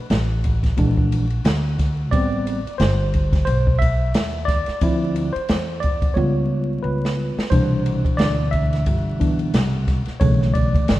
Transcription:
0.10 A1, snare, hi-hat pedal, ride
0.44 kick, ride
0.63 kick, snare, ride
0.77 A#1 E3 G#3 D4, kick, ride
0.97 kick
1.12 ride
1.30 ride
1.45 D2, snare, hi-hat pedal, ride
1.79 kick, snare, ride
2.11 A1 G3 B3 C4 D5, kick, ride
2.47 ride
2.65 muted upright bass stroke, ride
2.78 G1 C5, snare, hi-hat pedal, ride
3.14 kick, ride
3.33 kick, snare, ride
3.45 B1 C5, ride
3.67 kick
3.79 E5, kick, ride
4.14 D#2, snare, hi-hat pedal, ride
4.45 D5, kick, snare, ride
4.66 muted upright bass stroke, snare, ride
4.81 D2 F3 C4 E4, kick, ride
5.16 ride
5.32 C5, muted upright bass stroke, ride
5.48 E2, snare, hi-hat pedal, ride
5.80 D5, kick, ride
6.02 kick, ride
6.14 C#2 G3 B3 F4 C#5, kick
6.83 C#2 B4
7.05 snare
7.37 muted upright bass stroke, snare
7.50 C2 B2 E3 D4 C5, kick, ride
7.86 ride
8.05 muted upright bass stroke, kick, ride
8.17 D2 D5, snare, hi-hat pedal, ride
8.51 E5, kick, ride
8.73 snare, ride
8.86 G1, kick, ride
9.19 E3 B3 D4, kick, ride
9.39 ride
9.54 C2, snare, hi-hat pedal, ride
9.87 kick, snare, ride
10.06 muted upright bass stroke, snare, ride
10.20 B1 C#3 D3 E3 A3 C#5, kick, ride
10.42 snare
10.54 D5, kick, ride
10.74 muted upright bass stroke, kick, ride
10.88 G#1, snare, hi-hat pedal, ride

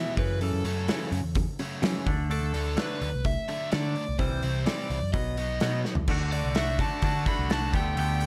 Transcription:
Already playing: E2 B2 E3 G3 B3 E4 E5
0.17 F#2 C#3 E3 B4, kick, open hi-hat
0.41 F#2 C#3 E3 A4, open hi-hat
0.53 F#2
0.64 F#2 C#3 F#3 A3 C#4 A4, open hi-hat
0.88 F#2 C#3 E3 F#3 A3 C#4, snare, open hi-hat
1.12 F#2 C#3, open hi-hat
1.23 E2
1.35 F#2 C#3, kick, open hi-hat
1.59 F#2 C#3 F#3 A3 C#4, open hi-hat
1.82 F#2 C#3 E3 F#3 A3 C#4, snare, open hi-hat
2.06 D2 D3 A3 D4, kick, open hi-hat
2.30 D3 A3 D4 A4, open hi-hat
2.42 D2
2.54 D2 D3 F#3 A3 D4, open hi-hat
2.77 D3 F#3 A3 D4 B4, snare, open hi-hat
3.01 D2 D3 A3, open hi-hat
3.14 C2
3.25 D3 A3 E5, kick, open hi-hat
3.48 D3 F#3 A3 D4, open hi-hat
3.72 D3 F#3 A3 D4 D5, snare, open hi-hat
3.96 D3 A3, open hi-hat
4.09 C2
4.19 C2 C3 E3 G3 C5, kick, open hi-hat
4.31 C2
4.42 C2 C3 E3 G3 C4 E4, open hi-hat
4.65 C3 E3 G3 C4 E4 D5, snare, open hi-hat
4.90 C2 C3 E3, open hi-hat
5.02 F#2
5.13 B1 B2 F#3 B3 D#5, kick, open hi-hat
5.37 B2 F#3 B3 D#4, open hi-hat
5.60 B2 F#3 B3 D#4, snare, open hi-hat
5.85 B2 F#3, snare
5.95 C#2, floor tom
6.08 D2 D3 A3 D4 F#4, kick, crash
6.32 A3 D4 F#4 D5, open hi-hat
6.44 C2
6.55 D3 A3 D4 F#4 E5, snare, open hi-hat
6.79 D3 A3 D4 F#4 D5 A5, kick, open hi-hat
7.02 D3 A3 D4 F#4, kick, open hi-hat
7.25 A3 D4 F#4 B5, kick, open hi-hat
7.39 C2
7.49 D3 A3 D4 F#4 A5, snare, open hi-hat
7.72 D2 D3 A3 B3 G4 G5, kick, open hi-hat
7.96 D2 D3 A3 B3 G4 G5, open hi-hat
8.20 A3 B3 G4, open hi-hat

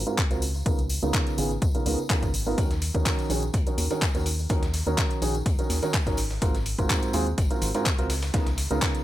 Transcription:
0.07 G#2 C4 F4 F#4 A#4, closed hi-hat, tambourine
0.18 kick, clap, closed hi-hat, tambourine
0.31 C#2 C4 F4 F#4 A#4, closed hi-hat, tambourine
0.42 open hi-hat, tambourine
0.54 tambourine
0.66 C#2 C#3 B3 D#4 F4 A#4, kick, closed hi-hat, tambourine
0.79 closed hi-hat, tambourine
0.89 open hi-hat, tambourine
1.03 C#2 C#3 B3 D#4 F4 A#4, closed hi-hat, tambourine
1.14 kick, clap, closed hi-hat, tambourine
1.27 closed hi-hat, tambourine
1.38 G#1 C#3 B3 D#4 F4 G#4, open hi-hat, tambourine
1.51 closed hi-hat, tambourine
1.62 C#2, kick, closed hi-hat, tambourine
1.75 C#3 B3 D#4 F4 A#4, closed hi-hat, tambourine
1.86 C#2 C#3 B3 D#4 F4 A#4, open hi-hat, tambourine
1.99 closed hi-hat, tambourine
2.10 C#3 B3 D#4 F4 A#4, kick, clap, closed hi-hat, tambourine
2.23 G#1, kick, closed hi-hat, tambourine
2.34 open hi-hat, tambourine
2.46 B3 D#4 F4 A#4, tambourine
2.58 D#2 D#3 C#4 D#4 A#4, kick, closed hi-hat, tambourine
2.71 snare, closed hi-hat, tambourine
2.82 closed hi-hat, open hi-hat, tambourine
2.95 D#2 D#3 C#4 D#4 F#4 A#4, kick, closed hi-hat, tambourine
3.06 kick, snare, clap, closed hi-hat, tambourine
3.19 closed hi-hat, tambourine
3.30 A#1 D#3 C#4 D#4 F#4 G#4, closed hi-hat, open hi-hat, tambourine
3.42 closed hi-hat, tambourine
3.53 D#2, kick, closed hi-hat, tambourine
3.67 D#3 C#4 D#4 F#4 A#4, closed hi-hat, tambourine
3.78 D#2, closed hi-hat, open hi-hat, tambourine
3.90 D#3 C#4 D#4 F#4 A#4, closed hi-hat, tambourine
4.02 kick, snare, clap, closed hi-hat, tambourine
4.15 D#2 D#3 C#4 D#4 F#4 A#4, closed hi-hat, tambourine
4.26 closed hi-hat, open hi-hat, tambourine
4.39 tambourine
4.49 D#2 D#3 C#4 D#4 F#4 A#4, kick, closed hi-hat, tambourine
4.63 snare, closed hi-hat, tambourine
4.74 snare, closed hi-hat, open hi-hat, tambourine
4.87 D#2 D#3 C#4 D#4 F#4 A#4, closed hi-hat, tambourine
4.97 kick, snare, clap, closed hi-hat, tambourine
5.10 closed hi-hat, tambourine
5.22 A#1 D#3 C#4 D#4 F#4 G#4, closed hi-hat, open hi-hat, tambourine
5.35 closed hi-hat, tambourine
5.46 D#2, kick, closed hi-hat, tambourine
5.59 D#3 C#4 D#4 F#4 A#4, closed hi-hat, tambourine
5.70 D#2, snare, closed hi-hat, open hi-hat, tambourine
5.83 D#3 C#4 D#4 F#4 A#4, closed hi-hat, tambourine
5.94 kick, snare, clap, closed hi-hat
6.07 G#1 C#4 D#4 F#4 A#4, kick, snare, closed hi-hat, tambourine
6.17 snare, closed hi-hat, open hi-hat, tambourine
6.31 snare, tambourine
6.42 G#1 G#2 C4 F4 F#4 A#4, kick, closed hi-hat, tambourine
6.55 snare, closed hi-hat, tambourine
6.66 closed hi-hat, open hi-hat, tambourine
6.79 G#1 G#2 C4 F4 F#4 A#4, kick, closed hi-hat, tambourine
6.90 kick, snare, clap, closed hi-hat, tambourine
7.03 closed hi-hat, tambourine
7.13 D#2 G#2 C4 F4 F#4 G#4, closed hi-hat, open hi-hat, tambourine
7.27 closed hi-hat, tambourine
7.38 G#1, kick, closed hi-hat, tambourine
7.51 G#2 C4 F4 F#4 A#4, closed hi-hat, tambourine
7.62 G#1, closed hi-hat, open hi-hat, tambourine
7.74 G#2 C4 F4 F#4 A#4, closed hi-hat, tambourine
7.86 kick, snare, clap, closed hi-hat, tambourine
7.99 C#2 C4 F4 F#4 A#4, closed hi-hat, tambourine
8.10 snare, closed hi-hat, open hi-hat, tambourine
8.23 snare, closed hi-hat, tambourine
8.34 C#2 C#3 B3 D#4 F4 A#4, kick, snare, closed hi-hat, tambourine
8.46 snare, closed hi-hat, tambourine
8.58 snare, closed hi-hat, open hi-hat, tambourine
8.71 C#2 C#3 B3 D#4 F4 A#4, closed hi-hat, tambourine
8.82 kick, snare, clap, closed hi-hat, tambourine
8.94 closed hi-hat, tambourine

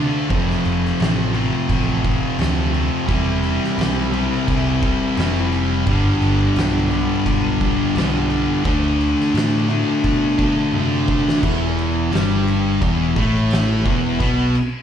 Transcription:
Already playing: D3 A3 D4 F4
0.29 F1 F2 C3 F3 A3 C4 F4, kick, crash
0.50 snare
0.65 F1, crash
0.85 snare
0.99 A1 F3 A3 C4 F4, snare, crash
1.33 F2 C3 F3 A3 C4 F4, crash
1.68 A1 F3 A3 C4 F4, kick, crash
2.03 F2 C3 F3, kick, crash
2.38 D2 F2 C3 F3 A3 C4 F4, snare, crash
2.72 F3 A3 C4 F4, crash
3.06 E1 C3 E3 G3 C4 E4, kick, crash
3.13 C4
3.43 crash
3.64 snare
3.77 B1 E3 G3 C4 E4, crash
3.81 snare
4.11 C3 E3 G3 C4 E4, crash
4.46 C2 E3 G3 C4 E4, kick, crash
4.82 C3 G3 C4, kick, crash
5.17 F1 C3 E3 G3 C4 E4, snare, crash
5.52 E3 G3 C4 E4, crash
5.86 G1 G2 D3 G3 B3 D4, kick, crash
6.22 G1, crash
6.56 B1 G2 D3 G3 B3 D4, snare, crash
6.91 G2 D3 G3 B3 D4, crash
7.26 B1 G2 D3 G3 B3 D4, kick, crash
7.60 G2 D3 G3, kick, crash
7.94 B1 G2 D3 G3 B3 D4, snare, crash
8.29 G2 D3 G3 B3 D4, crash
8.63 D2 D3 F3 A3 D4, kick, crash
9.01 crash
9.21 snare
9.33 A2 D3 F3 A3 D4, crash
9.38 snare
9.68 D3 F3 A3 D4, crash
9.72 D3
10.03 B2 D3 F3 A3 D4, kick, crash
10.38 A3 D4, kick, crash
10.42 D3
10.73 C3 D3 F3 A3 D4, high tom
11.08 D3 F3 A3 D4, kick
11.28 snare
11.43 E1 E2 E3, kick, crash
11.79 crash
12.11 G1 G2 G3, crash
12.15 snare
12.48 crash
12.81 E1 E2 E3, kick, crash
13.16 A1 A2 A3, kick, crash
13.51 snare, crash
13.84 E1 E2 E3, kick, crash
14.20 B1 B2 B3, kick, crash
14.55 crash

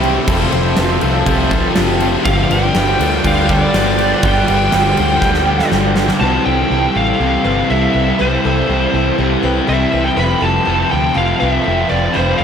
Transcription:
Already playing: C2 C3 E3 G4 C5 E5 B5
0.03 G3 C4 G4, crash
0.27 F1 F2 C3 F3 A3 C4 F4 A4 A5, kick, crash
0.31 F4
0.52 F1 C3 F3 A3 C4 F4 C5, crash
0.77 F1 F2 C3 F3 A3 B4, snare, crash
0.81 C4 F4
1.01 C2 C3 F3 A3 C4 F4 A4, crash
1.26 C2 F2 C3 F3 A3 C4 F4 G4, kick, crash
1.51 F3 A3 C4 F4 A4, kick, crash
1.55 C3
1.76 F#1 F2 C3 F3 A3 C4 F4 G4, snare, crash
2.00 C3 F3 A3 C4 F4 G4, crash
2.25 G1 G2 D3 F3 G3 B3 F4 G4 B4 D5 F5 G5, kick, crash
2.50 G1 D3 F3 G3 B3 G4 B4 G5, crash
2.75 G1 G2 D3 F3 G3 B3 G4 B4, snare, crash
2.99 D2 D3 F3 G3 B3 G4 A4, crash
3.24 D2 G2 D3 F3 G3 B3 G4 F5, kick, crash
3.49 D3 F3 G3 B3 G4 A4 D5, kick, crash
3.74 G1 G2 D3 F3 G3 B3 G4, snare, crash
3.98 D3 F3 G3 B3 G4, crash
4.22 G1 G2 D3 F3 G3 B3 G4 F5 G5, kick, crash
4.47 G1 D3 F3 G3 B3 G4 B4, crash
4.71 G1 G2 D3 F3 G3 B3 G4 B4, snare, crash
4.96 D2 D3 F3 G3 B3 G4 A4, crash
5.21 D2 G2 D3 F3 G3 B3 G4, kick, snare
5.34 snare
5.46 D3 F3 G3 B3 G4 A4
5.59 snare
5.70 G1 G2 D3 F3 G3 B3 G4, snare
5.95 D3 F3 G3 B3 G4, snare
6.08 snare
6.20 C2 C3 E3 G3 C4 E4 B4 A5
6.45 C2 G3 C4 E4 A4 G5
6.69 C2 C3 E3 G3 C4 E4 G4
6.95 A1 G3 C4 E4 A4 F5
7.20 C2 C3 E3 G3 C4 E4 G4
7.44 G1 G3 C4 E4 B4
7.70 C2 C3 E3 G3 C4 E4 A4 E5
7.94 C2 G3 C4 E4 B4
8.18 C2 C3 E3 G3 C4 E4 B4 C5
8.44 C2 G3 C4 E4 A4
8.68 C2 C3 E3 G3 C4 G4
8.72 E4
8.93 C2 G3 C4 E4 A4
9.18 C2 C3 E3 G3 C4 E4 G4
9.42 C2 G3 C4 E4 B4
9.66 C2 C3 E3 G3 C4 E4 A4 E5
9.91 C2 G3 C4 E4 B4
10.04 G5
10.16 F1 F2 C3 F3 A3 C4 F4 B4 B5
10.40 F1 A3 C4 F4 A4 A5
10.44 F3
10.65 F1 F2 C3 F3 A3 C4 F4 G4
10.89 D2 A3 C4 F4 A4 G5
10.95 F3
11.14 F1 F2 C3 F3 A3 C4 F4 F5
11.39 C2 C3 F3 A3 C4 F4 B4 F5
11.51 E5
11.64 F1 F2 C3 F3 A3 A4
11.68 C4 F4
11.89 F1 C4 F4 B4 D5
11.94 F3 A3
12.13 F1 F2 C3 F3 A3 C4 B4 C5
12.17 F4
12.38 F1 F4 A4 F5

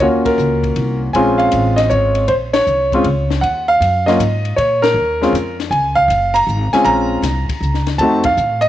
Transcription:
0.00 D#2 A#3 C#4 F4 F#4 C#5, ride
0.25 A#4, kick, ride
0.38 C#2, hi-hat pedal
0.63 kick, ride
0.76 C2, ride
1.13 A#1 G#3 C4 C#4 F4 G#5, ride
1.38 F5, ride
1.52 A1, hi-hat pedal, ride
1.76 D#5, snare, ride
1.90 G#1 C#5, hi-hat pedal
2.15 ride
2.28 A#1 C5, ride
2.53 C#5, snare, ride
2.67 C2, hi-hat pedal
2.92 G#3 C4 C#4 F4, kick, ride
3.04 C#2, ride
3.30 snare
3.41 D#2 F#5, ride
3.68 F5
3.80 F#2, hi-hat pedal, ride
4.06 F#3 A#3 C#4 F4 D#5, snare, ride
4.19 G#2, hi-hat pedal, ride
4.45 ride
4.56 A#2 C#5, ride
4.82 A#4, snare, ride
4.94 D#2
5.21 G#3 C4 C#4 F4, snare
5.32 F2, hi-hat pedal, ride
5.60 snare, ride
5.71 C#2 G#5, ride
5.95 F5, kick
6.08 F#1, hi-hat pedal, ride
6.34 A#5, ride
6.47 G#1, hi-hat pedal
6.73 G#3 C4 C#4 F4 G#5, snare, ride
6.85 A#1 A#5, ride
7.22 C2, snare, hi-hat pedal, ride
7.49 muted upright bass stroke, kick, ride
7.61 C#2, hi-hat pedal
7.74 snare
7.87 snare, ride
7.98 F2 A3 C4 D#4 F#4 A5, ride
8.24 F5, kick, ride
8.37 A2, hi-hat pedal
8.61 D#5, ride

